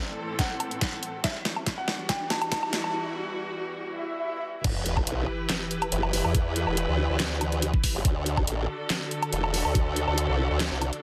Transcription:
Already playing: A2 E3 C4 A4, riser
0.39 F#5, kick, snare, closed hi-hat
0.60 closed hi-hat, low woodblock
0.71 closed hi-hat
0.81 kick, snare, closed hi-hat
1.03 closed hi-hat
1.24 E2 E3 G3 F#4 E5, kick, snare, closed hi-hat
1.45 snare, closed hi-hat
1.56 low woodblock
1.67 kick, snare, closed hi-hat
1.78 F#5
1.88 snare
2.09 G5, kick, snare, closed hi-hat
2.30 A5, snare, closed hi-hat
2.42 closed hi-hat, low woodblock
2.52 A5, kick, snare, closed hi-hat
2.63 low woodblock
2.73 snare, closed hi-hat
2.84 A5, low woodblock
3.79 swell
4.64 E1 E3 E4 G4 B4, kick, closed hi-hat, crash, sub drop
4.86 closed hi-hat
4.97 kick, low woodblock
5.07 B1, closed hi-hat
5.49 snare, clap, closed hi-hat
5.71 closed hi-hat
5.82 closed hi-hat, low woodblock
5.92 F#1, closed hi-hat
6.03 low woodblock
6.13 open hi-hat
6.25 E2, low woodblock
6.35 kick, closed hi-hat
6.56 closed hi-hat
6.67 E1, low woodblock
6.77 closed hi-hat
6.88 D2
7.10 D2
7.20 snare, clap, closed hi-hat
7.41 closed hi-hat, low woodblock
7.52 closed hi-hat
7.62 closed hi-hat
7.74 kick
7.84 kick, open hi-hat
7.95 G1
8.05 D2 D3 D4 F#4 A4, kick, closed hi-hat
8.26 closed hi-hat
8.37 kick, low woodblock
8.47 A1, closed hi-hat
8.90 snare, clap, closed hi-hat
9.11 closed hi-hat
9.23 closed hi-hat, low woodblock
9.33 E1, closed hi-hat
9.44 low woodblock
9.54 open hi-hat
9.65 D2, low woodblock
9.75 kick, closed hi-hat
9.96 closed hi-hat
10.08 D2, low woodblock
10.18 closed hi-hat
10.29 C2
10.50 D2
10.60 snare, clap, closed hi-hat
10.71 C2
10.82 closed hi-hat, low woodblock
10.93 closed hi-hat

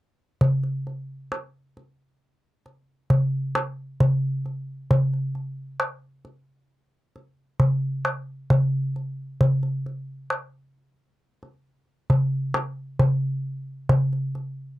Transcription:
0.41 darbuka dum
0.63 darbuka ka
0.87 darbuka ka
1.32 darbuka tek
1.77 darbuka ka
2.66 darbuka ka
3.10 darbuka dum
3.55 darbuka tek
4.00 darbuka dum
4.46 darbuka ka
4.91 darbuka dum
5.13 darbuka ka
5.35 darbuka ka
5.80 darbuka tek
6.25 darbuka ka
7.16 darbuka ka
7.60 darbuka dum
8.05 darbuka tek
8.50 darbuka dum
8.96 darbuka ka
9.41 darbuka dum
9.63 darbuka ka
9.86 darbuka ka
10.30 darbuka tek
11.43 darbuka ka
12.10 darbuka dum
12.54 darbuka tek
12.99 darbuka dum
13.89 darbuka dum
14.13 darbuka ka
14.35 darbuka ka

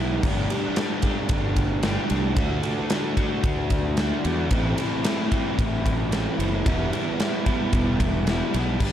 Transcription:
Already playing: B1 E3 G4
0.00 B3 E4
0.23 G1 G3 A3 D4, kick, crash
0.27 G4
0.50 A3 D4 G4, ride
0.76 G3 A3 D4 G4, snare, ride
1.02 D4 G4, kick, ride
1.07 A3
1.29 G1, kick, ride
1.56 kick, ride
1.83 G3 A3 D4 G4, snare, ride
2.10 C2 A3 D4 G4, ride
2.36 D2 D3 A3 D4 F#4, kick, ride
2.63 A3 D4 F#4, ride
2.90 D3 A3 D4 F#4, snare, ride
3.17 A3 D4 F#4, kick, ride
3.44 D2, kick, ride
3.70 kick, ride
3.97 D3 A3 D4 F#4, snare, ride
4.24 E2 A3 D4 F#4, ride
4.51 A1 A2 E3 A3 C4 E4, kick, ride
4.78 A3 C4 E4, ride
5.04 E3 A3 C4 E4, snare, ride
5.30 A3 C4 E4, kick, ride
5.59 A1, kick, ride
5.86 kick, ride
6.11 E3 A3 C4 E4, snare, ride
6.37 F#1 A3 C4 E4, ride
6.65 E1 E3 G3 B3 E4, kick, ride
6.93 G3 B3 E4, ride
7.19 E3 G3 B3 E4, snare, ride
7.46 G3 B3 E4, kick, ride
7.73 E1, kick, ride
8.00 kick, ride
8.27 E3 G3 B3 E4, snare, ride
8.53 B1 G3 B3 E4, ride
8.79 G1 G3 A3 D4 G4, kick, crash

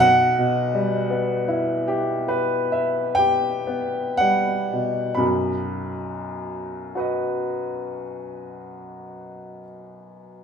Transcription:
Already playing: B1
0.00 F#5
0.38 B2
0.74 G3
1.10 B3
1.48 E4
1.88 G4
2.28 B4
2.72 E5
3.15 G4 G5
3.67 B3
4.17 G3 F#5
4.73 B2
5.15 B1 F#2 B5
6.95 F#4 B4 D#5

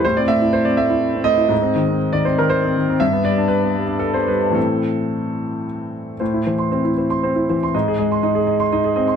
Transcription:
0.05 A2 C5
0.17 C4 D5
0.28 A3 E5
0.42 E4
0.53 C5
0.65 C4 D5
0.77 A3 E5
0.90 E4
1.15 C4
1.24 A3 D#5
1.38 E4
1.49 G#2
1.62 C4
1.75 D#3
1.88 C4
2.13 D#3 D5
2.25 C4 C5
2.38 D#3 A#4
2.50 C5
2.65 C4
2.77 D#3
2.89 C4
3.00 G2 E5
3.13 B3
3.25 G3 D5
3.37 D4
3.48 B4
3.64 B3
3.75 G3
3.87 D4
3.99 A4
4.14 B3 C5
4.27 G3 B4
4.41 D4
4.50 A2 E3 C4
4.55 A4
6.20 A2 C5
6.34 E4
6.46 E3 C5
6.59 C6
6.71 C4 C5
6.85 E4
6.98 C5
7.10 C6
7.23 C4 C5
7.36 E4
7.50 E3 C5
7.63 C6
7.74 G#2 D#5
7.88 G#4
7.98 G#3 D#5
8.12 C6
8.23 D#4 D#5
8.35 G#4
8.47 D#5
8.60 C6
8.72 D#4 D#5
8.84 G#4
8.96 C4 D#5
9.08 C6

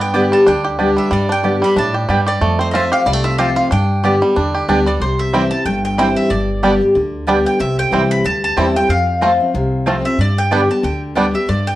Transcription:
Already playing: G2 D4
0.00 B3 G5
0.14 D3 G3 B3 G4 D5 G5
0.32 G3 A5
0.46 D2 D3 D4 G5
0.64 G4
0.79 D3 G3 B3 D4 G4 D5 G5
0.97 G3 E5
1.11 G2 G3 D5
1.29 D4 G5
1.43 D3 G3 B3 G4 D5 G5
1.62 G3 B3 G4 B5
1.76 A2 D4 A5
1.94 G4
2.09 G2 G3 B3 G4 D5 G5
2.26 G4 D5
2.41 F2 A3
2.59 C4 C5
2.71 F3 A3 C4 F4 C5 D#5 E5 A5
2.76 F4
2.92 G4 F5
3.06 C2 C3 G3 D5
3.13 A3
3.24 F4 E5
3.38 F3 A3 C4 F4 G4 C5 F5 A5
3.56 F4 F5
3.71 G2 D4 G5
4.03 D3 G3 B3 G4 D5 G5
4.21 G3 B3 G4
4.36 E2 D3 D4
4.54 G4
4.68 D2 D3 G3 B3 D4 G4 D5 G5
4.86 G3 G4 D5
5.00 C2 C3 C5
5.19 E5
5.33 E3 G3 C4 E4 C5 G5
5.51 C4 E4 A5
5.65 G1 G2 G5
5.85 G5
5.98 E3 G3 C4 E4 C5 G5
6.16 E5
6.30 G1 G2 D5
6.63 D3 G3 B3 D4 G4 D5 G5
6.81 B3 G4
6.95 D2 D3
7.26 D3 G3 B3 D4 G4 D5 G5
7.46 G5
7.59 C2 C3 E5
7.79 G5
7.91 C2 E3 G3 C4 E4 C5 G5
8.11 B5
8.24 D2 G2 A5
8.44 A5
8.56 E2 E3 G3 C4 E4 C5 G5
8.75 C4 E4 G5
8.89 F2 F5
9.21 F3 A3 C4 F4 C5 A5
9.40 C4 F4
9.54 C2 C3
9.86 F3 A3 C4 F4 C5 A5
10.05 C4 F4 E5
10.18 G2 D5
10.39 G5
10.51 D3 G3 B3 D4 G4 D5 G5
10.69 B3 G4 A5
10.84 D2 D3 G5
11.15 D3 G3 B3 D4 G4 D5 G5
11.34 B3 G4 E5
11.49 G2 D5
11.67 G5

